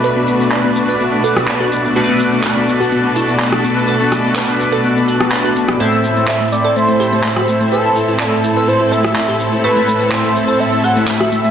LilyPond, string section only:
\new Staff \with { instrumentName = "String section" } { \time 4/4 \key a \dorian \tempo 4 = 125 << { b'1 | a'1~ | a'1 | a'1~ |
a'1~ | a'1 | } \\ { <b, a d' fis'>1~ | <b, a d' fis'>1~ | <b, a d' fis'>1 | <a, a c' e'>1~ |
<a, a c' e'>1~ | <a, a c' e'>1 | } >> }